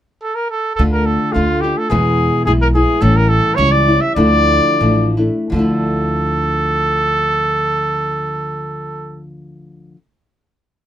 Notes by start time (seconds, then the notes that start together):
0.22 A4
0.35 A#4
0.50 A4
0.75 D2 D3 A4
0.79 A3 D4 F4
0.92 A#4
1.06 A4
1.32 D2 D3 A3 D4 F4
1.61 D4 F4 G4
1.66 A3
1.77 A4
1.89 E2 B2 E3 G#3 B3 E4 G#4
2.45 B1 E3 G#3 B3 E4 G#4
2.61 A#4
2.74 E3 G#3 B3 E4 G#4
3.01 A1 A2 E3 G3 C#4 E4 A4
3.16 A#4
3.29 A4
3.55 C#2 E3 G3 C#4 C#5
3.60 E4
3.71 D5
3.88 G3 C#4 E4
4.01 E5
4.15 D2 D3 F3 A3 D4 E4 D5
4.81 A1 F3 A3 D4 E4
5.17 A3 D4 E4
5.50 D2 D3 F3 A4
5.54 A3 D4
5.59 E4